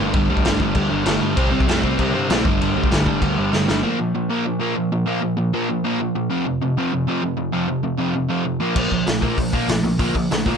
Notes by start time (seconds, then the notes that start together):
Already playing: A#3
0.00 G1 G2 D3 G3
0.13 G1 G2 D3 G3, kick, crash
0.29 D2 G2 D3 G3
0.37 kick
0.45 G1 G2 D3 G3, snare, crash
0.60 G1 G2 D3 G3, kick
0.75 D2 G2 D3 G3, kick, crash
0.89 G1 G2 D3 G3
1.04 G1 G2 D3 G3, snare, crash
1.20 G1 G2 D3 G3
1.35 C2 C3 G3 C4, kick, crash
1.51 C2 C3 G3 C4
1.60 kick
1.67 F2 C3 G3 C4, snare, crash
1.83 C2 C3 G3 C4, kick
1.98 C2 C3 G3 C4, kick, crash
2.14 G2 C3 G3 C4
2.29 A#1 C3 G3 C4, snare, crash
2.45 G1 G2 D3 G3, kick
2.61 G1 G2 D3 G3, crash
2.76 D2 G2 D3 G3
2.84 kick
2.91 G1 G2 D3 G3, snare, crash
3.06 G1 G2 D3 G3, kick
3.22 D2 G2 D3 G3, kick, crash
3.38 G1 G2 D3 G3
3.52 G1 G2 D3 G3, snare
3.67 G1 G2 D3 G3, snare
3.83 A#2 F3 A#3
3.99 A#2 F3
4.15 A#2 F3
4.29 A#2 F3 A#3
4.45 A#2 F3
4.60 A#2 F3 A#3
4.75 A#2 F3
4.92 A#2 F3
5.06 A#2 F3 A#3
5.21 A#2 F3
5.37 A#2 F3
5.53 A#2 F3 A#3
5.69 A#2 F3
5.84 A#2 F3 A#3
6.00 A#2 F3
6.15 A#2 F3
6.30 F2 C3 F3
6.46 F2 C3
6.61 F2 C3
6.77 F2 C3 F3
6.93 F2 C3
7.08 F2 C3 F3
7.23 F2 C3
7.37 F2 C3
7.53 F2 C3 F3
7.68 F2 C3
7.83 F2 C3
7.98 F2 C3 F3
8.15 F2 C3
8.29 F2 C3 F3
8.45 F2 C3
8.60 A#2 F3 A#3
8.75 A#1 A#2 F3 A#3, kick, crash
8.91 A#1 A#2 F3, kick
9.07 A#1 A#2 F3, snare, open hi-hat
9.21 A#2 F3 A#3, kick
9.37 A#1 A#2 F3, kick, open hi-hat
9.53 A#2 F3 A#3, kick
9.68 A#1 A#2 F3, snare, open hi-hat
9.83 A#1 A#2 F3
9.99 A#1 A#2 F3 A#3, kick, open hi-hat
10.15 A#1 A#2 F3, kick
10.31 A#1 A#2 F3, snare, open hi-hat
10.46 A#1 A#2 F3 A#3, kick